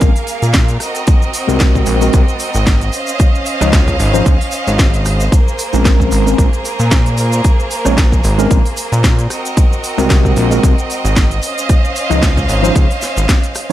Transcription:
Already playing: A#3 G#4 A#4 F5
0.01 A#1, kick, closed hi-hat, shaker
0.16 open hi-hat, shaker
0.27 open hi-hat, shaker
0.42 A#2, closed hi-hat, shaker
0.54 kick, snare, closed hi-hat, shaker
0.68 closed hi-hat, shaker
0.80 C4 F#4 D#5, cross-stick, open hi-hat, shaker
0.95 closed hi-hat, shaker
1.07 kick, closed hi-hat, shaker
1.22 shaker
1.33 open hi-hat, shaker
1.48 C2 G#3 C4 F#4 A#4, shaker
1.60 kick, snare, closed hi-hat, shaker
1.75 kick, shaker
1.86 A#1, open hi-hat, shaker
2.01 G#3 C4 F#4 A#4, closed hi-hat, shaker
2.13 C2, kick, closed hi-hat, shaker
2.28 closed hi-hat, shaker
2.39 open hi-hat, shaker
2.54 G#1, closed hi-hat, shaker
2.55 shaker
2.67 kick, snare, closed hi-hat, shaker
2.81 closed hi-hat, shaker
2.93 C#4 C5 F5, open hi-hat, shaker
3.07 closed hi-hat, shaker
3.09 shaker
3.19 kick, closed hi-hat, shaker
3.20 shaker
3.35 shaker
3.46 open hi-hat, shaker
3.61 C#2 F3 C#4 D#4 D#5, cross-stick, closed hi-hat, shaker
3.73 kick, snare, closed hi-hat, shaker
3.88 kick, closed hi-hat, shaker
4.00 G#1, open hi-hat, shaker
4.13 F3 C#4 D#4 C5, closed hi-hat, shaker
4.25 C#2, kick, closed hi-hat, shaker
4.41 open hi-hat, shaker
4.51 open hi-hat, shaker
4.67 G#1, closed hi-hat, shaker
4.78 kick, snare, closed hi-hat, shaker
4.80 shaker
4.94 closed hi-hat, shaker
5.05 cross-stick, open hi-hat, shaker
5.20 closed hi-hat, shaker
5.32 A#3 G#4 A#4, kick, closed hi-hat, shaker
5.48 shaker
5.59 open hi-hat, shaker
5.73 A#1 G#3 C4 C#4 A#4, shaker
5.75 shaker
5.85 kick, snare, closed hi-hat, shaker
6.00 kick, shaker
6.12 G#1, open hi-hat, shaker
6.26 G#3 C4 C#4 A#4, closed hi-hat, shaker
6.38 A#1, kick, closed hi-hat, shaker
6.53 closed hi-hat, shaker
6.65 open hi-hat, shaker
6.79 A#2, closed hi-hat, shaker
6.91 kick, snare, closed hi-hat, shaker
7.06 closed hi-hat, shaker
7.17 open hi-hat, shaker
7.32 closed hi-hat, shaker
7.44 kick, closed hi-hat, shaker
7.60 shaker
7.71 open hi-hat, shaker
7.85 A#1 G#3 C4 C#4 C#5, cross-stick, shaker
7.98 kick, snare, closed hi-hat, shaker
8.12 kick, shaker
8.24 G#1, open hi-hat, shaker
8.38 G#3 C4 C#4 A#4, closed hi-hat, shaker
8.51 A#1, kick, closed hi-hat, shaker
8.65 open hi-hat, shaker
8.77 open hi-hat, shaker
8.92 A#2, closed hi-hat, shaker
9.04 kick, snare, closed hi-hat, shaker
9.19 closed hi-hat, shaker
9.30 C4 F#4 A#4 D#5, cross-stick, open hi-hat, shaker
9.45 closed hi-hat, shaker
9.57 kick, closed hi-hat, shaker
9.73 shaker
9.84 open hi-hat, shaker
9.98 C2 G#3 C4 F#4 A#4, shaker
10.10 kick, snare, closed hi-hat, shaker
10.25 kick, shaker
10.36 A#1, open hi-hat, shaker
10.51 G#3 C4 F#4 A#4, closed hi-hat, shaker
10.63 C2, kick, closed hi-hat, shaker
10.78 closed hi-hat, shaker
10.90 open hi-hat, shaker
11.04 G#1, closed hi-hat, shaker
11.16 kick, snare, closed hi-hat, shaker
11.31 closed hi-hat, shaker
11.42 C#4 C5 F5, open hi-hat, shaker
11.58 closed hi-hat, shaker
11.69 kick, closed hi-hat, shaker
11.85 shaker
11.96 open hi-hat, shaker
12.10 C#2 F3 C#4 D#4 D#5, cross-stick, closed hi-hat, shaker
12.23 kick, snare, closed hi-hat, shaker
12.37 kick, closed hi-hat, shaker
12.49 G#1, open hi-hat, shaker
12.63 F3 C#4 D#4 C5, closed hi-hat, shaker
12.76 C#2, kick, closed hi-hat, shaker
12.90 open hi-hat, shaker
13.02 snare, open hi-hat, shaker
13.16 G#1, closed hi-hat, shaker
13.18 shaker
13.29 kick, snare, closed hi-hat, shaker
13.43 closed hi-hat, shaker
13.55 cross-stick, open hi-hat, shaker
13.69 F3

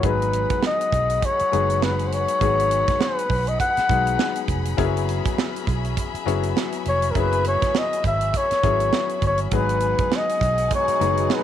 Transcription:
0.03 G#1 F#3 G#3 B3 D#4 G#4 B4 F#5 B5, kick, closed hi-hat
0.22 closed hi-hat
0.33 closed hi-hat
0.50 muted fingered electric bass stroke, kick, closed hi-hat
0.63 D#5, snare
0.81 closed hi-hat
0.92 B1, kick, closed hi-hat
1.10 closed hi-hat
1.22 C#5, kick, closed hi-hat
1.39 muted fingered electric bass stroke, closed hi-hat
1.52 F#1 F#3 G#3 B3 D#4 G#4, closed hi-hat
1.70 closed hi-hat
1.82 B4, snare
1.99 closed hi-hat
2.07 C5
2.12 C#5, closed hi-hat
2.28 closed hi-hat
2.41 G#1 F#3 G#3 B3 D#4 G#4, kick, closed hi-hat
2.60 closed hi-hat
2.71 closed hi-hat
2.88 muted fingered electric bass stroke, kick, snare, closed hi-hat
3.01 B4, snare
3.19 closed hi-hat
3.30 B1, kick, open hi-hat
3.47 D#5, closed hi-hat
3.60 F#5, kick, closed hi-hat
3.77 muted fingered electric bass stroke, snare, closed hi-hat
3.89 B1 F#3 G#3 B3 D#4 G#4, kick, closed hi-hat
4.07 closed hi-hat
4.19 snare
4.36 closed hi-hat
4.48 F1, kick, closed hi-hat
4.65 closed hi-hat
4.77 F#1 F#3 A#3 C#4 E4 G#4 E5, kick, closed hi-hat
4.84 B3
4.97 closed hi-hat
5.09 closed hi-hat
5.25 muted fingered electric bass stroke, kick, closed hi-hat
5.38 snare
5.56 closed hi-hat
5.67 B1, kick, closed hi-hat
5.85 closed hi-hat
5.97 kick, closed hi-hat
6.14 muted fingered electric bass stroke, closed hi-hat
6.26 F#1 F#3 B3 C#4 E4 G#4, closed hi-hat
6.43 closed hi-hat
6.57 snare
6.72 closed hi-hat
6.85 F1 C#5, closed hi-hat
7.02 closed hi-hat
7.11 A#4
7.15 F#1 F#3 A#3 C#4 E4 G#4 B4, kick, closed hi-hat
7.21 B3
7.32 closed hi-hat
7.44 C#5, closed hi-hat
7.62 muted fingered electric bass stroke, kick, snare, closed hi-hat
7.75 D#5, snare
7.93 closed hi-hat
8.04 G#1 E5, kick, closed hi-hat
8.21 closed hi-hat
8.34 C#5, kick, closed hi-hat
8.51 muted fingered electric bass stroke, snare, closed hi-hat
8.63 G#1 F#3 B3 C#4 E4 G#4, kick, closed hi-hat
8.80 closed hi-hat
8.93 snare
9.09 closed hi-hat
9.22 G1, kick, closed hi-hat
9.27 C#5
9.38 closed hi-hat
9.51 G#1 F#3 G#3 B3 D#4 G#4 F#5 G#5, kick, closed hi-hat
9.56 B4
9.69 closed hi-hat
9.80 closed hi-hat
9.98 muted fingered electric bass stroke, kick, closed hi-hat
10.12 snare
10.16 D#5
10.29 closed hi-hat
10.41 B1, kick, closed hi-hat
10.58 closed hi-hat
10.70 B2 G#3 D#4, kick, closed hi-hat
10.75 C#5
10.88 muted fingered electric bass stroke, closed hi-hat
11.00 F#1 F#3 G#3 B3 D#4 G#4, closed hi-hat
11.17 closed hi-hat
11.30 snare
11.34 B4

